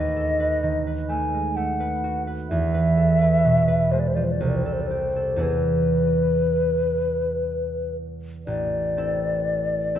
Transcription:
Already playing: D#2 A3 B4 D#5
0.16 A4
0.40 B4
0.63 D#3
0.87 B4
1.09 A3 G#5
1.34 G#3
1.56 A3 F#5
1.80 B4
2.04 F#4
2.27 B4
2.50 E2 E5
2.74 B4
2.97 A4
3.21 B4
3.45 B2
3.68 B4
3.92 G#3 C5
4.00 D5
4.08 C5
4.15 F3 D5
4.24 C5
4.32 D5
4.40 C2 C5
4.49 D5
4.56 C5
4.65 A4 D5
4.73 C5
4.81 D5
4.87 G4 C5
5.16 A4
5.36 E2 B3 E4
5.40 G#4 B4
8.47 A1 D5
8.97 C4 E4 A4
9.95 C4 E4 A4

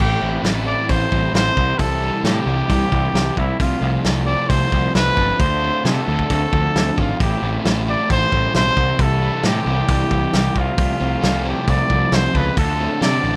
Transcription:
0.00 A1 A2 E3 A3 C4 E4 G4, kick, crash
0.22 A1 C4
0.44 A1 A4, snare, open hi-hat
0.66 E4 D5
0.89 A1 C4 C5, kick, open hi-hat
1.11 A1 G3, kick
1.34 A1 C4 C5, snare, open hi-hat
1.55 C2 C3 E3 G3 C4 E4, kick
1.79 C2 C3 A4, kick, open hi-hat
2.02 G3
2.24 A2 G4 A4, snare, open hi-hat
2.46 C2 E4
2.69 C2 G3, kick, open hi-hat
2.92 C2 E3, kick
3.14 C2 G3, snare, open hi-hat
3.36 C2 C3 F3 A3 C4 E4, kick
3.60 C2 C3 F4, kick, open hi-hat
3.82 C2 C4
4.04 C2 A4, snare, open hi-hat
4.26 E4 D5
4.49 C2 C4 C5, kick, open hi-hat
4.72 C2 F3, kick
4.95 C2 C4 B4, snare, open hi-hat
5.17 G1 A4, kick
5.38 D2 D3 A3 D4 F4 C5, kick, open hi-hat
5.63 C4
5.85 C3 A4, snare, open hi-hat
6.07 D2 D4
6.19 kick
6.30 D2 C4, kick, open hi-hat
6.53 D2 F3, kick
6.76 D2 C4, snare, open hi-hat
6.97 G#1 F4 A4, kick
7.19 A1 A2 E3 A3 C4 E4 G4, kick, open hi-hat
7.42 A1 C4
7.65 A1 A4, snare, open hi-hat
7.88 E4 D5
8.10 A1 C4 C5, kick, open hi-hat
8.32 A1 G3, kick
8.54 B1 C4 C5, snare, open hi-hat
8.76 C2 C3 E3 G3 C4 E4, kick
8.99 C2 C3 A4, kick, open hi-hat
9.22 G3
9.43 A2 G4 A4, snare, open hi-hat
9.66 C2 E4
9.88 C2 G3, kick, open hi-hat
10.11 C2 E3, kick
10.33 C2 G3, snare, open hi-hat
10.55 C2 C3 F3 A3 C4 F4, kick
10.78 C2 C3, kick, open hi-hat
11.00 C2 C4
11.22 C2 A4, snare, open hi-hat
11.45 E4 G4
11.68 C2 C4 D5, kick, open hi-hat
11.90 C2 F3, kick
12.12 C2 C4 C5, snare, open hi-hat
12.34 C#2 A4 B4, kick
12.56 D2 D3 A3 D4 F4 A4, kick, open hi-hat
12.79 C4
13.01 C3 A4 D5, snare, open hi-hat
13.24 A1 D4

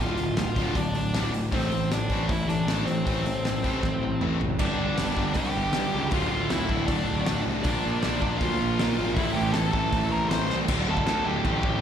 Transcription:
0.00 D1 D2 A2 D3 F4 F5
0.18 D1 D2 A2, open hi-hat
0.37 D1 D2 A2 F4 F5, snare, open hi-hat
0.56 D1 D2 A2 D3, kick, open hi-hat
0.75 D1 D2 A2 D4 D5, kick, open hi-hat
0.94 D2 A2, open hi-hat
1.14 D1 D2 A2 D3, snare, open hi-hat
1.33 D1 D2 A2, open hi-hat
1.51 A1 A2 E3 A3 C4 C5, kick, open hi-hat
1.71 A1 A2 E3, open hi-hat
1.91 A1 A2 E3 D4 D5, snare, open hi-hat
2.10 A1 A2 E3 A3, kick, open hi-hat
2.28 A1 A2 E3 E4 E5, kick, open hi-hat
2.48 A1 A2 E3 D4 D5, open hi-hat
2.67 A1 A2 E3 A3, snare, open hi-hat
2.85 A1 A2 E3 C4 C5, open hi-hat
3.05 A1 A2 E3 A3, kick, open hi-hat
3.25 A1 A2 E3, open hi-hat
3.44 A1 A2 E3, snare, open hi-hat
3.64 A1 A2 E3 A3, kick, open hi-hat
3.83 A1 A2 E3, kick, snare
4.02 A2 E3
4.21 A1 A2 E3 A3, mid tom
4.41 F#1 A2 E3, floor tom
4.59 G1 G2 D3 G3 B3 D4 G4 D5, kick, crash
4.79 G1
4.97 G1 G2 D3 G3, snare, open hi-hat
5.17 G1 G2 D3 G3, kick
5.34 C2 G2 D3 G3 G4 G5, kick, open hi-hat
5.56 G1
5.73 G2 D3 G3, snare, open hi-hat
5.93 C#2 G2 D3 G3
6.11 D1 D2 A2 D3 A3 F4 F5, kick, open hi-hat
6.29 D1 F5
6.33 F4
6.49 D1 D2 A2 D3 E4 E5, snare, open hi-hat
6.69 D1 D2 A2 D3, kick
6.86 D1 D2 D5, kick, open hi-hat
6.91 A2 D3 D4
7.09 D1
7.26 D1 D2 A2 D3, snare, open hi-hat
7.47 C2 D2 A2 D3
7.63 A#1 A#2 F3 A#3 D4 F4 A#4 D5, kick, open hi-hat
7.86 A#1
8.03 A#1 A#2 F3 A#3, snare, open hi-hat
8.21 A#1 A#2 F3 A#3, kick
8.38 D2 A#2 F3 A#3 F4 F5, kick, open hi-hat
8.61 A#1
8.79 A#2 F3 A#3, snare, open hi-hat
8.98 G#1 A#2 F3 A#3
9.14 A1 A2 E3 C4 E4 E5, kick, open hi-hat
9.18 A3 E4 A4
9.33 A1 G4 G5
9.53 A1 A2 E3 A3 A4 A5, snare, open hi-hat
9.72 A1 A2 E3 A3 A4 A5, kick
9.92 A1 A2 E3 A3, kick, open hi-hat
10.11 A1 A#4 A#5
10.29 A1 A2 E3 A3 C5 C6, snare, open hi-hat
10.49 C2 A2 E3 A3, snare
10.68 D1 D2 A2 D3, kick, crash
10.87 D1 A4 A5
10.97 kick
11.06 D2 A2 D3, snare, crash
11.25 D1 D2 A2 D3 G4 G5
11.44 A1 D2 A2 D3, kick, crash
11.63 A1, kick

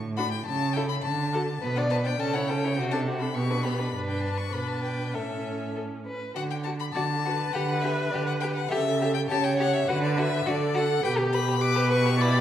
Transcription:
Already playing: A2
0.17 D4 F#4 B5
0.31 G5
0.46 C#3 A5
0.73 E4 A4 G5
0.89 B5
1.02 D3 A5
1.33 F#4 A4
1.62 B2 B3 B4
1.76 D4 D5 F#5
1.90 B3 B4 A5
2.05 D4 D5 G5
2.20 C#3 C#4 A4 A5
2.34 E4 C#5 F#5
2.48 C#4 A4 G5
2.65 E4 C#5
2.77 C3 C4 F#4
2.91 D4 A4 A5
3.08 C4 F#4
3.20 D4 A4 B5
3.35 B2 B3 G4 C#6
3.50 D4 B4
3.63 B3 G4 B5
3.79 D4 B4
3.93 G2 D4 B4
4.08 G5
4.21 A5
4.38 C#6
4.52 B2 D4 B4 B5
4.68 A5
4.83 G5
5.14 A2 C#4 A4 E5
5.76 A4
6.06 B4
6.35 D3 F#4 F#5
6.51 G5
6.63 F#4 A5
6.79 B5
6.93 D3 F#4 D5 A5
7.24 F#4 B4
7.53 D3 G4 F#5
7.82 G4 E5
8.11 D3 G4 D5
8.27 F#5
8.40 G4 G5
8.55 F#5
8.69 C#3 G4 A4 E5
9.02 G4
9.14 G5
9.29 C#3 G4 C#5 A5
9.44 G5
9.59 G4 F#5
9.74 E5
9.88 D3 F#4 B4 F#5
10.03 D5
10.17 F#4 E5
10.45 D3 F#4 A4 D5
10.75 F#4 F#5
11.04 B2 G4 B4 G5
11.18 G4
11.32 B4 B5
11.49 G4
11.61 B4 D6
11.77 G4
11.90 B4 C#6
12.06 G4
12.19 E4 D5 B5
12.34 G4

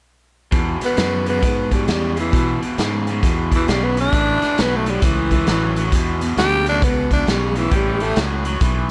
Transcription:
0.51 E2 B2, kick, closed hi-hat
0.81 E2 B2, muted fingered electric bass stroke, snare, closed hi-hat
0.85 B3
0.97 E2 F#2 C#3, snare, closed hi-hat
1.25 E2 C#3 B3, closed hi-hat
1.41 E2 G#2 B2, kick, closed hi-hat
1.70 E2 B2 G3, kick, closed hi-hat
1.86 E2 C#3, snare, closed hi-hat
1.91 G3
2.16 E2 C#3 E3, closed hi-hat
2.31 E2 B2, kick, closed hi-hat
2.61 E2 B2, muted fingered electric bass stroke, closed hi-hat
2.78 E2 G#2 C#3, snare, closed hi-hat
3.07 E2 C#3, closed hi-hat
3.23 E2 B2, kick, closed hi-hat
3.51 E2 B2, kick, closed hi-hat
3.55 E3
3.67 B1 E2 C#3 G3, snare, closed hi-hat
3.84 B3
3.96 E2 C#3, closed hi-hat
4.00 D4
4.12 A1 A2 E3, kick, closed hi-hat
4.42 A2 E3, muted fingered electric bass stroke, snare, closed hi-hat
4.57 B1 A2 F#3, snare, closed hi-hat
4.61 B3
4.76 A3
4.86 A2 F#3, closed hi-hat
4.90 G3
5.01 C#2 A2 E3, kick, closed hi-hat
5.31 A2 E3, kick, closed hi-hat
5.47 A1 A2 F#3, snare, closed hi-hat
5.76 A2 F#3, closed hi-hat
5.92 E2 B2, kick, closed hi-hat
6.21 E2 B2, closed hi-hat
6.36 D2 E2 C#3 G4, snare, closed hi-hat
6.66 E2 C#3 D4, closed hi-hat
6.82 C#2 E2 B2 B3, kick, closed hi-hat
7.11 E2 B2 D4, kick, closed hi-hat
7.26 B1 E2 C#3 G3, snare, closed hi-hat
7.55 E2 C#3 E3, closed hi-hat
7.71 A1 A2 E3 G3 B3 C#4 G4, kick, closed hi-hat
8.00 A2 E3 A3, closed hi-hat
8.16 C#2 A2 F#3, snare, closed hi-hat
8.45 A2 F#3, closed hi-hat
8.61 B1 A2 E3, kick, closed hi-hat

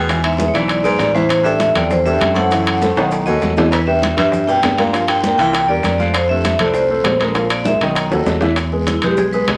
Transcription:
Already playing: E2 B2 G#5
0.08 E3 E4 E5, high bongo, high timbale, long guiro, maracas
0.23 G#2 E5, high bongo, high conga, high timbale, maracas
0.38 G#3 G#4 B4, high bongo, high conga, short guiro, maracas
0.48 E2 C#5
0.53 B1 G#2 E3 E4 D5 E5, high conga, high timbale, short guiro, maracas
0.68 high bongo, high conga, high timbale, long guiro, maracas
0.83 G#2 G#3 G#4 B4 D5, high bongo, high conga, maracas
0.99 A1, high bongo, low bongo, high conga, high timbale, short guiro, maracas
1.14 E2 E3 E4 C5 E5, high bongo, high conga, short guiro, maracas
1.29 high bongo, high conga, high timbale, long guiro, maracas
1.43 G2 G3 G4 A4 E5, high conga, maracas
1.60 high bongo, high conga, high timbale, short guiro, maracas
1.74 E2 F2 G3 G4 A4 D5, high bongo, high conga, low conga, high timbale, short guiro, maracas
1.89 E2 C5, high bongo, high conga, low conga, long guiro, maracas
2.04 G2 G3 G4 A4 E5, high bongo, high conga, maracas
2.20 F#2, high bongo, low bongo, high conga, high timbale, short guiro, maracas
2.34 A2 A3 A4 C5 F#5, high bongo, high conga, high timbale, short guiro, maracas
2.51 E3 E4 E5, high bongo, high conga, high timbale, long guiro, maracas
2.66 high bongo, high conga, high timbale, maracas
2.82 A3 A4 C5, high bongo, high conga, short guiro, maracas
2.96 B1 D#3 D#4 D#5, high conga, high timbale, short guiro, maracas
3.11 high bongo, high conga, long guiro, maracas
3.25 D#2 F#2 F#3 F#4 A4 D#5, high bongo, high conga, maracas
3.41 E2, high bongo, low bongo, high conga, short guiro, maracas
3.56 F#2 E3 E4 D#5 E5, high bongo, high conga, low timbale, short guiro, maracas
3.70 D2 B4, high bongo, high timbale, long guiro, maracas
3.86 G2 G3 G4 B4 E5, high conga
4.02 high bongo, high conga, high timbale, short guiro, maracas
4.17 G2 G3 G4 B4 E5, high bongo, high conga, low conga, high timbale, short guiro, maracas
4.32 high bongo, high conga, low conga, long guiro, maracas
4.47 B2 G3 G4 B4 G5, high bongo, high conga, maracas
4.63 G2, high bongo, low bongo, high conga, high timbale, low timbale, short guiro, maracas
4.78 A#2 A#3 A#4 D5 F5, high bongo, high conga, high timbale, short guiro, maracas
4.93 F3 F4 F5, high bongo, high conga, high timbale, long guiro, maracas
5.08 A#2 G5, high bongo, high conga, high timbale, maracas
5.23 A#3 A#4 D5, high bongo, high conga, short guiro, maracas
5.38 C2 A#2 E3 E4 E5 G5, high conga, high timbale, short guiro, maracas
5.53 high bongo, high conga, high timbale, long guiro, maracas
5.68 E2 G2 G3 G4 A#4 D5, high bongo, high conga
5.83 F2, high bongo, low bongo, high conga, high timbale, short guiro, maracas
5.98 F2 F3 F4 D5 F5, high bongo, high conga, short guiro, maracas
6.14 F2 C5, high bongo, high conga, high timbale, long guiro, maracas
6.29 G2 A3 A4 C5 E5, high conga
6.44 high bongo, high conga, high timbale, short guiro, maracas
6.59 C2 A3 A4 C5, high bongo, high conga, low conga, high timbale, short guiro, maracas
6.65 F2 D5
6.74 F2 C5, high bongo, long guiro, maracas
6.89 A3 A4 C5, high bongo, high conga
7.04 A#1, high bongo, low bongo, high conga, high timbale, low timbale, short guiro, maracas
7.20 D2 G#3 G#4 A#4, high bongo, high conga, high timbale, short guiro, maracas
7.35 F3 F4 F5, high bongo, high conga, high timbale, long guiro, maracas
7.50 F2 D5, high bongo, high conga, high timbale, maracas
7.64 G#2 G#3 G#4 A#4 E5, high bongo, high conga, short guiro, maracas
7.80 B1 F#2 D#3 D#4 D#5, high conga, high timbale, short guiro, maracas
7.95 high bongo, high conga, high timbale, long guiro, maracas
8.11 D#2 F#3 F#4 A4, high bongo, high conga, high timbale, maracas
8.26 E2, high bongo, low bongo, high conga, low timbale, short guiro, maracas
8.41 E3 E4 E5, high bongo, high conga, low timbale, short guiro, maracas
8.56 high bongo, high timbale, long guiro, maracas
8.72 G#3 G#4 B4, high conga
8.87 E4, high bongo, high conga, high timbale, short guiro, maracas
9.02 B1 G#3 G4 G#4 B4, high bongo, high conga, low conga, high timbale, short guiro, maracas
9.17 G#4, high bongo, high conga, low conga, long guiro, maracas
9.33 G#3 G#4 B4, high bongo, high conga, maracas
9.47 C2 D#5, high bongo, low bongo, high conga, high timbale, short guiro, maracas

